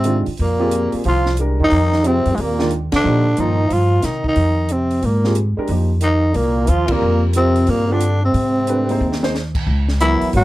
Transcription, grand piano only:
0.04 0.24 D#3 medium
0.04 0.24 G#3 medium
0.04 0.25 D4 soft
0.04 0.25 F4 medium
0.59 1.02 C4 medium
0.59 1.03 F4 medium
0.59 1.02 G4 medium
0.59 1.03 G#4 medium
1.39 1.58 G#3 medium
1.39 1.58 D4 medium
1.39 1.59 G4 medium
1.39 1.59 A#4 medium
2.06 2.55 C4 soft
2.06 2.56 F4 soft
2.06 2.55 G4 medium
2.06 2.56 G#4 medium
2.59 2.70 D#3 medium
2.59 2.70 G#3 medium
2.59 2.70 D4 medium
2.59 2.70 F4 medium
3.04 3.23 F3 medium
3.04 3.23 A#3 medium
3.04 3.24 D#4 medium
3.04 3.24 G4 medium
3.38 3.57 F3 medium
3.38 3.57 A#3 soft
3.38 3.57 D#4 soft
3.38 3.58 F4 medium
5.25 5.35 G3 medium
5.25 5.35 C4 medium
5.25 5.36 F4 medium
5.25 5.36 G#4 medium
5.57 5.68 G#3 medium
5.57 5.69 D4 medium
5.57 5.69 G4 medium
5.57 5.69 A#4 medium
5.70 5.89 F3 soft
5.70 5.89 A#3 soft
5.70 5.90 D#4 soft
5.70 5.90 G4 medium
6.91 7.33 G3 medium
6.91 7.34 C4 medium
6.91 7.34 F4 medium
6.91 7.34 A#4 medium
7.35 7.85 G3 medium
7.35 7.86 C4 soft
7.35 7.86 F4 medium
7.35 7.86 A#4 medium
7.90 8.01 G3 medium
7.90 8.01 C4 medium
7.90 8.01 F4 medium
7.90 8.02 G4 medium
8.68 8.87 A3 medium
8.68 8.88 D4 soft
8.68 8.88 G4 soft
8.68 8.88 B4 medium
8.90 9.18 A#3 medium
8.90 9.19 D#4 medium
8.90 9.19 G#4 medium
8.90 9.19 C5 medium
9.23 9.33 A#3 medium
9.23 9.33 D#4 medium
9.23 9.33 G#4 medium
9.23 9.34 C5 medium
10.00 10.44 F#3 medium
10.00 10.44 B3 medium
10.00 10.44 E4 medium
10.00 10.44 A#4 medium

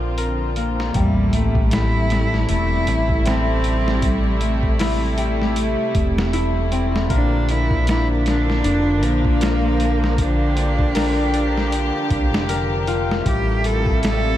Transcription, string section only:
0.00 0.91 D3 medium
0.00 0.91 F3 medium
0.00 0.92 C4 medium
0.00 0.91 F4 medium
0.94 7.06 C3 medium
0.94 7.06 G3 medium
0.94 7.06 A3 medium
0.94 7.06 E4 medium
7.10 13.22 D3 medium
7.10 13.22 F3 medium
7.10 13.21 A#3 medium
7.10 10.15 D4 medium
10.18 13.23 G4 loud
13.25 14.37 C3 medium
13.25 14.37 G3 medium
13.25 14.37 A3 medium
13.25 14.37 E4 medium

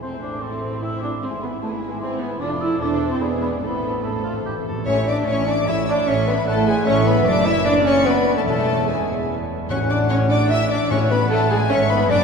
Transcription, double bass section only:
0.02 1.18 A1 medium
1.21 2.40 G#1 medium
2.40 2.78 F1 medium
2.81 3.21 E1 medium
3.22 3.62 E1 medium
3.62 4.66 A1 medium
4.86 5.22 A1 medium
5.27 5.63 A1 loud
5.67 6.02 A1 loud
6.07 6.42 A1 loud
6.47 6.81 A1 loud
6.86 7.21 A1 loud
7.26 8.42 F#1 loud
8.47 9.48 E1 medium
9.70 10.86 A1 medium
10.90 11.69 A1 loud
11.70 12.10 G#1 loud
12.09 12.24 F#1 loud

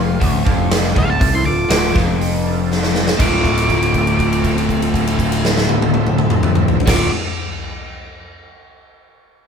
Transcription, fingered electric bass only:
0.00 0.18 F1 loud
0.22 0.45 D1 medium
0.47 0.93 F1 loud
0.96 1.19 D1 medium
1.21 1.44 C2 medium
1.46 1.69 D1 medium
1.70 1.93 D1 medium
1.96 3.16 F1 medium
3.20 6.78 D1 medium
6.87 7.08 D1 medium

